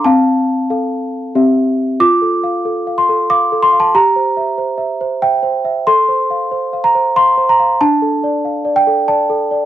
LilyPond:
\new Staff \with { instrumentName = "Celesta" } { \time 3/4 \key f \major \tempo 4 = 93 << { <f'' a''>2 r4 | d'''4. c'''8 d'''8 c'''16 a''16 | bes''2 g''4 | c'''4. bes''8 c'''8 bes''8 |
a''4. g''8 a''4 | } \\ { c'4 <a' f''>4 <c' g' e''>4 | \tuplet 3/2 { f'8 a'8 f''8 a'8 f''8 a'8 f''8 a'8 f''8 } | \tuplet 3/2 { g'8 c''8 e''8 c''8 e''8 c''8 e''8 c''8 e''8 } | \tuplet 3/2 { a'8 c''8 f''8 c''8 f''8 c''8 f''8 c''8 f''8 } |
\tuplet 3/2 { d'8 a'8 d''8 f''8 d''8 a'8 d''8 a'8 d''8 } | } >> }